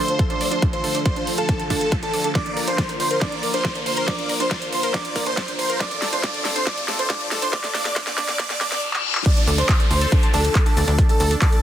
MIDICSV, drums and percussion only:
0, 0, Header, 1, 2, 480
1, 0, Start_track
1, 0, Key_signature, -1, "minor"
1, 0, Tempo, 431655
1, 695, Time_signature, 4, 2, 24, 8
1, 12921, End_track
2, 0, Start_track
2, 0, Title_t, "Drums"
2, 93, Note_on_c, 9, 42, 61
2, 204, Note_off_c, 9, 42, 0
2, 214, Note_on_c, 9, 36, 120
2, 214, Note_on_c, 9, 42, 62
2, 325, Note_off_c, 9, 36, 0
2, 325, Note_off_c, 9, 42, 0
2, 333, Note_on_c, 9, 42, 60
2, 445, Note_off_c, 9, 42, 0
2, 453, Note_on_c, 9, 46, 109
2, 564, Note_off_c, 9, 46, 0
2, 572, Note_on_c, 9, 42, 62
2, 683, Note_off_c, 9, 42, 0
2, 693, Note_on_c, 9, 42, 61
2, 694, Note_on_c, 9, 36, 126
2, 804, Note_off_c, 9, 42, 0
2, 805, Note_off_c, 9, 36, 0
2, 813, Note_on_c, 9, 42, 60
2, 924, Note_off_c, 9, 42, 0
2, 933, Note_on_c, 9, 46, 109
2, 1044, Note_off_c, 9, 46, 0
2, 1053, Note_on_c, 9, 42, 65
2, 1164, Note_off_c, 9, 42, 0
2, 1173, Note_on_c, 9, 42, 62
2, 1174, Note_on_c, 9, 36, 118
2, 1284, Note_off_c, 9, 42, 0
2, 1285, Note_off_c, 9, 36, 0
2, 1293, Note_on_c, 9, 42, 63
2, 1405, Note_off_c, 9, 42, 0
2, 1414, Note_on_c, 9, 46, 111
2, 1525, Note_off_c, 9, 46, 0
2, 1533, Note_on_c, 9, 42, 63
2, 1644, Note_off_c, 9, 42, 0
2, 1653, Note_on_c, 9, 42, 60
2, 1654, Note_on_c, 9, 36, 117
2, 1765, Note_off_c, 9, 42, 0
2, 1766, Note_off_c, 9, 36, 0
2, 1774, Note_on_c, 9, 42, 61
2, 1885, Note_off_c, 9, 42, 0
2, 1893, Note_on_c, 9, 46, 109
2, 1895, Note_on_c, 9, 36, 58
2, 2004, Note_off_c, 9, 46, 0
2, 2006, Note_off_c, 9, 36, 0
2, 2014, Note_on_c, 9, 42, 62
2, 2125, Note_off_c, 9, 42, 0
2, 2133, Note_on_c, 9, 42, 59
2, 2135, Note_on_c, 9, 36, 119
2, 2244, Note_off_c, 9, 42, 0
2, 2246, Note_off_c, 9, 36, 0
2, 2253, Note_on_c, 9, 42, 59
2, 2365, Note_off_c, 9, 42, 0
2, 2374, Note_on_c, 9, 46, 109
2, 2485, Note_off_c, 9, 46, 0
2, 2494, Note_on_c, 9, 42, 62
2, 2605, Note_off_c, 9, 42, 0
2, 2614, Note_on_c, 9, 38, 48
2, 2614, Note_on_c, 9, 42, 59
2, 2615, Note_on_c, 9, 36, 120
2, 2725, Note_off_c, 9, 38, 0
2, 2725, Note_off_c, 9, 42, 0
2, 2726, Note_off_c, 9, 36, 0
2, 2734, Note_on_c, 9, 42, 61
2, 2845, Note_off_c, 9, 42, 0
2, 2854, Note_on_c, 9, 46, 102
2, 2966, Note_off_c, 9, 46, 0
2, 2975, Note_on_c, 9, 42, 66
2, 3086, Note_off_c, 9, 42, 0
2, 3095, Note_on_c, 9, 36, 122
2, 3095, Note_on_c, 9, 38, 50
2, 3095, Note_on_c, 9, 42, 64
2, 3206, Note_off_c, 9, 36, 0
2, 3206, Note_off_c, 9, 38, 0
2, 3206, Note_off_c, 9, 42, 0
2, 3214, Note_on_c, 9, 42, 64
2, 3326, Note_off_c, 9, 42, 0
2, 3335, Note_on_c, 9, 46, 107
2, 3446, Note_off_c, 9, 46, 0
2, 3455, Note_on_c, 9, 42, 65
2, 3566, Note_off_c, 9, 42, 0
2, 3574, Note_on_c, 9, 38, 53
2, 3574, Note_on_c, 9, 42, 60
2, 3575, Note_on_c, 9, 36, 120
2, 3685, Note_off_c, 9, 38, 0
2, 3685, Note_off_c, 9, 42, 0
2, 3686, Note_off_c, 9, 36, 0
2, 3694, Note_on_c, 9, 42, 63
2, 3805, Note_off_c, 9, 42, 0
2, 3813, Note_on_c, 9, 46, 109
2, 3925, Note_off_c, 9, 46, 0
2, 3934, Note_on_c, 9, 42, 63
2, 4045, Note_off_c, 9, 42, 0
2, 4054, Note_on_c, 9, 38, 55
2, 4054, Note_on_c, 9, 42, 62
2, 4055, Note_on_c, 9, 36, 117
2, 4165, Note_off_c, 9, 38, 0
2, 4165, Note_off_c, 9, 42, 0
2, 4166, Note_off_c, 9, 36, 0
2, 4174, Note_on_c, 9, 42, 62
2, 4285, Note_off_c, 9, 42, 0
2, 4294, Note_on_c, 9, 46, 105
2, 4405, Note_off_c, 9, 46, 0
2, 4414, Note_on_c, 9, 42, 61
2, 4525, Note_off_c, 9, 42, 0
2, 4534, Note_on_c, 9, 38, 59
2, 4534, Note_on_c, 9, 42, 64
2, 4535, Note_on_c, 9, 36, 115
2, 4645, Note_off_c, 9, 38, 0
2, 4645, Note_off_c, 9, 42, 0
2, 4646, Note_off_c, 9, 36, 0
2, 4655, Note_on_c, 9, 42, 64
2, 4766, Note_off_c, 9, 42, 0
2, 4775, Note_on_c, 9, 46, 105
2, 4886, Note_off_c, 9, 46, 0
2, 4894, Note_on_c, 9, 42, 65
2, 5005, Note_off_c, 9, 42, 0
2, 5014, Note_on_c, 9, 38, 64
2, 5014, Note_on_c, 9, 42, 67
2, 5015, Note_on_c, 9, 36, 114
2, 5125, Note_off_c, 9, 38, 0
2, 5125, Note_off_c, 9, 42, 0
2, 5126, Note_off_c, 9, 36, 0
2, 5134, Note_on_c, 9, 42, 68
2, 5245, Note_off_c, 9, 42, 0
2, 5254, Note_on_c, 9, 46, 102
2, 5365, Note_off_c, 9, 46, 0
2, 5374, Note_on_c, 9, 42, 66
2, 5485, Note_off_c, 9, 42, 0
2, 5495, Note_on_c, 9, 36, 114
2, 5495, Note_on_c, 9, 38, 63
2, 5495, Note_on_c, 9, 42, 64
2, 5606, Note_off_c, 9, 36, 0
2, 5606, Note_off_c, 9, 38, 0
2, 5606, Note_off_c, 9, 42, 0
2, 5614, Note_on_c, 9, 42, 66
2, 5725, Note_off_c, 9, 42, 0
2, 5734, Note_on_c, 9, 46, 102
2, 5735, Note_on_c, 9, 36, 56
2, 5845, Note_off_c, 9, 46, 0
2, 5846, Note_off_c, 9, 36, 0
2, 5854, Note_on_c, 9, 42, 64
2, 5965, Note_off_c, 9, 42, 0
2, 5975, Note_on_c, 9, 36, 107
2, 5975, Note_on_c, 9, 38, 72
2, 5975, Note_on_c, 9, 42, 65
2, 6086, Note_off_c, 9, 36, 0
2, 6086, Note_off_c, 9, 38, 0
2, 6086, Note_off_c, 9, 42, 0
2, 6095, Note_on_c, 9, 42, 64
2, 6206, Note_off_c, 9, 42, 0
2, 6215, Note_on_c, 9, 46, 105
2, 6326, Note_off_c, 9, 46, 0
2, 6335, Note_on_c, 9, 42, 63
2, 6446, Note_off_c, 9, 42, 0
2, 6454, Note_on_c, 9, 36, 120
2, 6455, Note_on_c, 9, 38, 70
2, 6455, Note_on_c, 9, 42, 69
2, 6566, Note_off_c, 9, 36, 0
2, 6566, Note_off_c, 9, 38, 0
2, 6566, Note_off_c, 9, 42, 0
2, 6574, Note_on_c, 9, 42, 67
2, 6685, Note_off_c, 9, 42, 0
2, 6694, Note_on_c, 9, 38, 77
2, 6694, Note_on_c, 9, 46, 104
2, 6805, Note_off_c, 9, 38, 0
2, 6805, Note_off_c, 9, 46, 0
2, 6813, Note_on_c, 9, 42, 68
2, 6925, Note_off_c, 9, 42, 0
2, 6934, Note_on_c, 9, 36, 115
2, 6934, Note_on_c, 9, 38, 80
2, 6934, Note_on_c, 9, 42, 69
2, 7045, Note_off_c, 9, 38, 0
2, 7045, Note_off_c, 9, 42, 0
2, 7046, Note_off_c, 9, 36, 0
2, 7053, Note_on_c, 9, 42, 66
2, 7164, Note_off_c, 9, 42, 0
2, 7173, Note_on_c, 9, 38, 81
2, 7173, Note_on_c, 9, 46, 101
2, 7284, Note_off_c, 9, 38, 0
2, 7284, Note_off_c, 9, 46, 0
2, 7293, Note_on_c, 9, 42, 72
2, 7404, Note_off_c, 9, 42, 0
2, 7413, Note_on_c, 9, 38, 81
2, 7413, Note_on_c, 9, 42, 69
2, 7414, Note_on_c, 9, 36, 117
2, 7524, Note_off_c, 9, 38, 0
2, 7524, Note_off_c, 9, 42, 0
2, 7526, Note_off_c, 9, 36, 0
2, 7533, Note_on_c, 9, 42, 68
2, 7645, Note_off_c, 9, 42, 0
2, 7653, Note_on_c, 9, 38, 85
2, 7653, Note_on_c, 9, 46, 100
2, 7765, Note_off_c, 9, 38, 0
2, 7765, Note_off_c, 9, 46, 0
2, 7774, Note_on_c, 9, 42, 68
2, 7885, Note_off_c, 9, 42, 0
2, 7894, Note_on_c, 9, 38, 86
2, 7894, Note_on_c, 9, 42, 67
2, 7895, Note_on_c, 9, 36, 112
2, 8005, Note_off_c, 9, 38, 0
2, 8005, Note_off_c, 9, 42, 0
2, 8006, Note_off_c, 9, 36, 0
2, 8014, Note_on_c, 9, 42, 66
2, 8125, Note_off_c, 9, 42, 0
2, 8133, Note_on_c, 9, 38, 95
2, 8133, Note_on_c, 9, 46, 102
2, 8245, Note_off_c, 9, 38, 0
2, 8245, Note_off_c, 9, 46, 0
2, 8254, Note_on_c, 9, 42, 70
2, 8365, Note_off_c, 9, 42, 0
2, 8374, Note_on_c, 9, 38, 94
2, 8374, Note_on_c, 9, 42, 67
2, 8375, Note_on_c, 9, 36, 121
2, 8485, Note_off_c, 9, 38, 0
2, 8485, Note_off_c, 9, 42, 0
2, 8486, Note_off_c, 9, 36, 0
2, 8493, Note_on_c, 9, 38, 84
2, 8493, Note_on_c, 9, 42, 69
2, 8605, Note_off_c, 9, 38, 0
2, 8605, Note_off_c, 9, 42, 0
2, 8614, Note_on_c, 9, 38, 98
2, 8614, Note_on_c, 9, 46, 105
2, 8725, Note_off_c, 9, 38, 0
2, 8725, Note_off_c, 9, 46, 0
2, 8734, Note_on_c, 9, 38, 88
2, 8734, Note_on_c, 9, 42, 70
2, 8845, Note_off_c, 9, 38, 0
2, 8845, Note_off_c, 9, 42, 0
2, 8854, Note_on_c, 9, 38, 97
2, 8854, Note_on_c, 9, 42, 73
2, 8855, Note_on_c, 9, 36, 113
2, 8965, Note_off_c, 9, 38, 0
2, 8965, Note_off_c, 9, 42, 0
2, 8966, Note_off_c, 9, 36, 0
2, 8974, Note_on_c, 9, 38, 88
2, 8974, Note_on_c, 9, 42, 68
2, 9085, Note_off_c, 9, 38, 0
2, 9085, Note_off_c, 9, 42, 0
2, 9094, Note_on_c, 9, 38, 102
2, 9094, Note_on_c, 9, 46, 101
2, 9205, Note_off_c, 9, 38, 0
2, 9205, Note_off_c, 9, 46, 0
2, 9214, Note_on_c, 9, 38, 91
2, 9214, Note_on_c, 9, 42, 72
2, 9325, Note_off_c, 9, 38, 0
2, 9325, Note_off_c, 9, 42, 0
2, 9334, Note_on_c, 9, 38, 103
2, 9334, Note_on_c, 9, 42, 73
2, 9335, Note_on_c, 9, 36, 114
2, 9446, Note_off_c, 9, 36, 0
2, 9446, Note_off_c, 9, 38, 0
2, 9446, Note_off_c, 9, 42, 0
2, 9454, Note_on_c, 9, 38, 93
2, 9454, Note_on_c, 9, 42, 72
2, 9566, Note_off_c, 9, 38, 0
2, 9566, Note_off_c, 9, 42, 0
2, 9574, Note_on_c, 9, 38, 110
2, 9574, Note_on_c, 9, 46, 109
2, 9575, Note_on_c, 9, 36, 59
2, 9686, Note_off_c, 9, 36, 0
2, 9686, Note_off_c, 9, 38, 0
2, 9686, Note_off_c, 9, 46, 0
2, 9695, Note_on_c, 9, 38, 97
2, 9695, Note_on_c, 9, 42, 73
2, 9806, Note_off_c, 9, 38, 0
2, 9806, Note_off_c, 9, 42, 0
2, 9935, Note_on_c, 9, 39, 74
2, 10046, Note_off_c, 9, 39, 0
2, 10175, Note_on_c, 9, 39, 100
2, 10286, Note_off_c, 9, 39, 0
2, 10295, Note_on_c, 9, 36, 125
2, 10296, Note_on_c, 9, 42, 67
2, 10296, Note_on_c, 9, 49, 102
2, 10296, Note_on_c, 9, 82, 41
2, 10406, Note_off_c, 9, 36, 0
2, 10407, Note_off_c, 9, 42, 0
2, 10407, Note_off_c, 9, 49, 0
2, 10407, Note_off_c, 9, 82, 0
2, 10415, Note_on_c, 9, 42, 68
2, 10415, Note_on_c, 9, 82, 28
2, 10527, Note_off_c, 9, 42, 0
2, 10527, Note_off_c, 9, 82, 0
2, 10536, Note_on_c, 9, 46, 109
2, 10536, Note_on_c, 9, 82, 74
2, 10647, Note_off_c, 9, 46, 0
2, 10647, Note_off_c, 9, 82, 0
2, 10656, Note_on_c, 9, 42, 71
2, 10656, Note_on_c, 9, 82, 31
2, 10767, Note_off_c, 9, 42, 0
2, 10767, Note_off_c, 9, 82, 0
2, 10775, Note_on_c, 9, 36, 124
2, 10776, Note_on_c, 9, 39, 126
2, 10776, Note_on_c, 9, 42, 72
2, 10776, Note_on_c, 9, 82, 41
2, 10886, Note_off_c, 9, 36, 0
2, 10887, Note_off_c, 9, 39, 0
2, 10887, Note_off_c, 9, 42, 0
2, 10887, Note_off_c, 9, 82, 0
2, 10896, Note_on_c, 9, 42, 73
2, 10896, Note_on_c, 9, 82, 29
2, 11007, Note_off_c, 9, 42, 0
2, 11007, Note_off_c, 9, 82, 0
2, 11016, Note_on_c, 9, 46, 106
2, 11016, Note_on_c, 9, 82, 73
2, 11127, Note_off_c, 9, 46, 0
2, 11127, Note_off_c, 9, 82, 0
2, 11136, Note_on_c, 9, 42, 73
2, 11136, Note_on_c, 9, 82, 32
2, 11247, Note_off_c, 9, 42, 0
2, 11247, Note_off_c, 9, 82, 0
2, 11255, Note_on_c, 9, 36, 120
2, 11255, Note_on_c, 9, 42, 68
2, 11255, Note_on_c, 9, 82, 41
2, 11366, Note_off_c, 9, 36, 0
2, 11366, Note_off_c, 9, 42, 0
2, 11366, Note_off_c, 9, 82, 0
2, 11375, Note_on_c, 9, 42, 74
2, 11375, Note_on_c, 9, 82, 29
2, 11487, Note_off_c, 9, 42, 0
2, 11487, Note_off_c, 9, 82, 0
2, 11495, Note_on_c, 9, 46, 110
2, 11495, Note_on_c, 9, 82, 72
2, 11606, Note_off_c, 9, 46, 0
2, 11606, Note_off_c, 9, 82, 0
2, 11615, Note_on_c, 9, 42, 72
2, 11615, Note_on_c, 9, 82, 30
2, 11727, Note_off_c, 9, 42, 0
2, 11727, Note_off_c, 9, 82, 0
2, 11735, Note_on_c, 9, 36, 113
2, 11735, Note_on_c, 9, 39, 123
2, 11735, Note_on_c, 9, 42, 68
2, 11735, Note_on_c, 9, 82, 40
2, 11846, Note_off_c, 9, 36, 0
2, 11846, Note_off_c, 9, 39, 0
2, 11846, Note_off_c, 9, 42, 0
2, 11846, Note_off_c, 9, 82, 0
2, 11855, Note_on_c, 9, 42, 69
2, 11855, Note_on_c, 9, 82, 28
2, 11966, Note_off_c, 9, 42, 0
2, 11966, Note_off_c, 9, 82, 0
2, 11975, Note_on_c, 9, 46, 107
2, 11975, Note_on_c, 9, 82, 73
2, 12087, Note_off_c, 9, 46, 0
2, 12087, Note_off_c, 9, 82, 0
2, 12096, Note_on_c, 9, 42, 67
2, 12096, Note_on_c, 9, 82, 30
2, 12207, Note_off_c, 9, 42, 0
2, 12207, Note_off_c, 9, 82, 0
2, 12215, Note_on_c, 9, 36, 127
2, 12216, Note_on_c, 9, 42, 67
2, 12216, Note_on_c, 9, 82, 41
2, 12326, Note_off_c, 9, 36, 0
2, 12327, Note_off_c, 9, 42, 0
2, 12327, Note_off_c, 9, 82, 0
2, 12335, Note_on_c, 9, 42, 63
2, 12335, Note_on_c, 9, 82, 28
2, 12447, Note_off_c, 9, 42, 0
2, 12447, Note_off_c, 9, 82, 0
2, 12455, Note_on_c, 9, 46, 111
2, 12455, Note_on_c, 9, 82, 74
2, 12566, Note_off_c, 9, 46, 0
2, 12566, Note_off_c, 9, 82, 0
2, 12575, Note_on_c, 9, 42, 70
2, 12575, Note_on_c, 9, 82, 31
2, 12686, Note_off_c, 9, 42, 0
2, 12686, Note_off_c, 9, 82, 0
2, 12695, Note_on_c, 9, 36, 122
2, 12695, Note_on_c, 9, 39, 125
2, 12695, Note_on_c, 9, 42, 69
2, 12695, Note_on_c, 9, 82, 42
2, 12806, Note_off_c, 9, 36, 0
2, 12806, Note_off_c, 9, 39, 0
2, 12806, Note_off_c, 9, 42, 0
2, 12806, Note_off_c, 9, 82, 0
2, 12815, Note_on_c, 9, 42, 69
2, 12815, Note_on_c, 9, 82, 29
2, 12921, Note_off_c, 9, 42, 0
2, 12921, Note_off_c, 9, 82, 0
2, 12921, End_track
0, 0, End_of_file